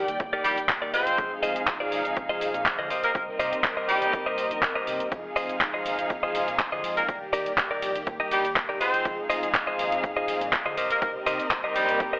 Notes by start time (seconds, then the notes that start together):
Already playing: D5 G5
0.08 D#2 D#3 G3 A#3 G4 D5, closed hi-hat, shaker
0.20 D#2, kick, closed hi-hat, shaker
0.33 D#4 G4 A#4 D5, muted fingered electric bass stroke
0.44 A#1 G3 G4, open hi-hat, shaker
0.58 closed hi-hat, shaker
0.69 kick, clap, closed hi-hat, shaker
0.82 D#4 G4 A#4 D5
0.93 C4 D#4 F4 G#4 C5 D#5 F5, muted fingered electric bass stroke, open hi-hat, shaker
1.07 F1, closed hi-hat, shaker
1.18 F2 F3 G#3 C4 D#4 G#4, kick, closed hi-hat, shaker
1.43 F1 F4 G#4 C5 D#5, open hi-hat, shaker
1.56 closed hi-hat, shaker
1.67 kick, clap, closed hi-hat, shaker
1.80 F4 G#4 C5 D5
1.92 D#2, open hi-hat, shaker
2.04 F2 F3 G#3 C4 D#4 G#4, closed hi-hat, shaker
2.17 kick, closed hi-hat, shaker
2.29 F4 G#4 C5 D#5
2.41 C2, open hi-hat, shaker
2.54 A#2, closed hi-hat, shaker
2.66 kick, clap, closed hi-hat, shaker
2.79 D3 F4 G#4 C5 D#5
2.90 C2 C4 G4 A#4 C5 D#5, open hi-hat, shaker
3.04 A#3 A#4, closed hi-hat, shaker
3.14 G3 A#3 C4 D#4 A#4, kick, closed hi-hat, shaker
3.28 muted fingered electric bass stroke
3.39 C3 G4 A#4 C5 D#5, open hi-hat, shaker
3.53 closed hi-hat, shaker
3.64 kick, clap, closed hi-hat, shaker
3.77 G4 A#4 C5 D#5
3.88 A#1 G3 G4, open hi-hat, shaker
4.01 C2 G3 A#3 C4 D#4 A#4, closed hi-hat, shaker
4.13 kick, closed hi-hat, shaker
4.26 G4 A#4 C5 D#5
4.38 open hi-hat, shaker
4.51 A#1, closed hi-hat, shaker
4.62 kick, clap, closed hi-hat, shaker
4.75 G4 A#4 C5 D#5
4.87 C3, open hi-hat, shaker
5.00 closed hi-hat, shaker
5.11 F2 F3 G#3 C4 D#4 G#4 F5, kick, closed hi-hat, ride, shaker
5.36 F1 F4 G#4 C5 D#5, open hi-hat, ride, shaker
5.49 closed hi-hat, shaker
5.61 kick, clap, closed hi-hat, ride, shaker
5.74 F4 G#4 C5 D#5
5.86 D#2, open hi-hat, ride, shaker
5.98 F2 F3 G#3 C4 D#4 G#4, closed hi-hat, shaker
6.10 kick, closed hi-hat, ride, shaker
6.23 F4 G#4 C5 D#5
6.35 C2, open hi-hat, ride, shaker
6.48 A#2, closed hi-hat, shaker
6.59 kick, clap, closed hi-hat, shaker
6.72 D3 F4 G#4 C5 D#5
6.84 F2, open hi-hat, ride, shaker
6.97 A#3 A#4, closed hi-hat, shaker
7.08 D#3 G3 A#3 G4 A#4 D5, kick, closed hi-hat, ride, shaker
7.22 muted fingered electric bass stroke
7.33 D#2 D#4 G4 A#4 D5, open hi-hat, ride, shaker
7.46 closed hi-hat, shaker
7.58 kick, clap, closed hi-hat, ride, shaker
7.71 D#4 G4 A#4 D5
7.82 A#1, open hi-hat, ride, shaker
7.95 D#2 D#3 G3 A#3, closed hi-hat, shaker
8.07 D#2, kick, closed hi-hat, ride, shaker
8.20 D#4 G4 A#4 D#5, muted fingered electric bass stroke
8.31 A#1 G3 G4, open hi-hat, ride, shaker
8.45 closed hi-hat, shaker
8.56 kick, clap, closed hi-hat, ride, shaker
8.69 D#4 G4 A#4 D5
8.80 C4 D#4 F4 G#4 C5 D#5 F5, muted fingered electric bass stroke, open hi-hat, ride, shaker
8.94 F1, closed hi-hat, shaker
9.04 F2 F3 G#3 C4 D#4 G#4, kick, closed hi-hat, ride, shaker
9.30 F1 F4 G#4 C5 D#5, open hi-hat, ride, shaker
9.43 closed hi-hat, shaker
9.54 kick, clap, closed hi-hat, shaker
9.67 F4 G#4 C5 D#5
9.79 D#2, open hi-hat, ride, shaker
9.91 F2 F3 G#3 C4 D#4 G#4, closed hi-hat, shaker
10.04 kick, closed hi-hat, ride, shaker
10.16 F4 G#4 C5 D#5
10.28 C2, open hi-hat, ride, shaker
10.41 A#2, closed hi-hat, shaker
10.53 kick, clap, closed hi-hat, ride, shaker
10.66 D3 F4 G#4 C5 D#5
10.77 C2 C4 G4 A#4 C5 D#5, open hi-hat, ride, shaker
10.90 A#3 A#4, closed hi-hat, shaker
11.01 G3 A#3 C4 D#4 A#4, kick, closed hi-hat, ride, shaker
11.15 muted fingered electric bass stroke
11.26 C3 G4 A#4 C5 D#5, open hi-hat, ride, shaker
11.40 closed hi-hat, shaker
11.51 kick, clap, closed hi-hat, shaker
11.64 G4 A#4 C5 D#5
11.76 A#1 G3 G4, open hi-hat, ride, shaker
11.88 C2 G3 A#3 C4 D#4 A#4, closed hi-hat, shaker
12.00 kick, closed hi-hat, ride, shaker
12.13 G4 A#4 C5 D#5, muted fingered electric bass stroke